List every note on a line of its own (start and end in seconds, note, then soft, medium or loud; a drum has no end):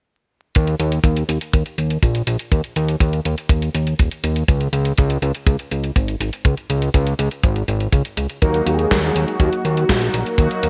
0.55 0.75 D#2 medium
0.55 kick loud
0.55 closed hi-hat medium
0.67 closed hi-hat soft
0.80 0.99 D#2 medium
0.80 closed hi-hat medium
0.92 closed hi-hat soft
1.04 1.24 D#2 loud
1.04 kick medium
1.04 closed hi-hat medium
1.17 closed hi-hat soft
1.29 1.39 D#2 medium
1.29 closed hi-hat medium
1.41 closed hi-hat soft
1.53 1.63 D#2 loud
1.53 kick medium
1.53 closed hi-hat medium
1.66 closed hi-hat soft
1.78 1.98 D#2 medium
1.78 closed hi-hat medium
1.90 closed hi-hat soft
2.03 2.22 A#1 medium
2.03 kick medium
2.03 closed hi-hat medium
2.15 closed hi-hat soft
2.27 2.37 A#1 medium
2.27 closed hi-hat medium
2.39 closed hi-hat soft
2.52 2.62 D#2 medium
2.52 kick loud
2.52 closed hi-hat medium
2.64 closed hi-hat soft
2.76 2.96 D#2 medium
2.76 closed hi-hat medium
2.89 closed hi-hat soft
3.00 3.20 D#2 medium
3.00 kick loud
3.00 closed hi-hat medium
3.13 closed hi-hat soft
3.25 3.35 D#2 medium
3.25 closed hi-hat medium
3.38 closed hi-hat soft
3.49 3.69 D#2 medium
3.49 kick loud
3.49 closed hi-hat medium
3.62 closed hi-hat soft
3.74 3.94 D#2 medium
3.74 closed hi-hat medium
3.87 closed hi-hat soft
3.99 4.09 D#1 medium
3.99 kick medium
3.99 closed hi-hat medium
4.11 closed hi-hat soft
4.24 4.44 D#2 medium
4.24 closed hi-hat medium
4.36 closed hi-hat soft
4.48 4.68 C#2 medium
4.48 kick loud
4.48 closed hi-hat medium
4.61 closed hi-hat soft
4.73 4.93 C#2 medium
4.73 closed hi-hat medium
4.85 closed hi-hat soft
4.98 5.18 C#2 medium
4.98 kick medium
4.98 closed hi-hat medium
5.10 closed hi-hat soft
5.22 5.32 C#2 medium
5.22 closed hi-hat medium
5.35 closed hi-hat soft
5.47 5.57 C#2 loud
5.47 kick loud
5.47 closed hi-hat medium
5.59 closed hi-hat soft
5.71 5.91 C#2 medium
5.71 closed hi-hat medium
5.84 closed hi-hat soft
5.96 6.16 G#1 medium
5.96 kick medium
5.96 closed hi-hat medium
6.08 closed hi-hat soft
6.20 6.30 G#1 medium
6.20 closed hi-hat medium
6.33 closed hi-hat soft
6.45 6.55 C#2 medium
6.45 kick loud
6.45 closed hi-hat medium
6.57 closed hi-hat soft
6.70 6.90 C#2 medium
6.70 closed hi-hat medium
6.82 closed hi-hat soft
6.94 7.14 C#2 medium
6.94 kick medium
6.94 closed hi-hat medium
7.07 closed hi-hat soft
7.19 7.29 C#2 medium
7.19 closed hi-hat medium
7.31 closed hi-hat soft
7.43 7.63 G#1 medium
7.43 kick loud
7.43 closed hi-hat medium
7.56 closed hi-hat soft
7.68 7.88 G#1 medium
7.68 closed hi-hat medium
7.80 closed hi-hat soft
7.92 8.02 C#2 medium
7.92 kick medium
7.92 closed hi-hat medium
8.05 closed hi-hat soft
8.17 8.27 C#2 medium
8.17 closed hi-hat medium
8.30 closed hi-hat soft
8.42 8.62 D#2 medium
8.42 9.13 F#3 medium
8.42 9.13 A#3 medium
8.42 9.13 D#4 medium
8.42 9.13 F#4 medium
8.42 8.65 A#4 loud
8.42 kick loud
8.42 closed hi-hat medium
8.54 closed hi-hat soft
8.66 8.86 D#2 medium
8.66 9.36 G#4 loud
8.66 closed hi-hat medium
8.79 closed hi-hat soft
8.91 9.11 D#2 loud
8.91 kick medium
8.91 snare loud
8.91 closed hi-hat medium
9.03 closed hi-hat soft
9.15 9.25 D#2 medium
9.15 10.36 F#3 medium
9.15 10.36 A#3 medium
9.15 10.36 D#4 medium
9.15 10.36 F#4 medium
9.15 closed hi-hat medium
9.28 closed hi-hat soft
9.40 9.50 D#2 loud
9.40 9.63 F#4 medium
9.40 kick loud
9.40 closed hi-hat medium
9.53 closed hi-hat soft
9.65 9.85 D#2 medium
9.65 10.10 F#4 medium
9.65 closed hi-hat medium
9.77 closed hi-hat soft
9.89 10.09 A#1 medium
9.89 kick loud
9.89 snare loud
9.89 closed hi-hat medium
10.02 closed hi-hat soft
10.14 10.24 A#1 medium
10.14 10.70 A#4 loud
10.14 closed hi-hat medium
10.26 closed hi-hat soft
10.38 10.48 D#2 medium
10.38 10.70 F#3 medium
10.38 10.70 A#3 medium
10.38 10.70 D#4 medium
10.38 10.70 F#4 medium
10.38 kick loud
10.38 closed hi-hat medium
10.51 closed hi-hat soft
10.63 10.70 D#2 medium
10.63 closed hi-hat medium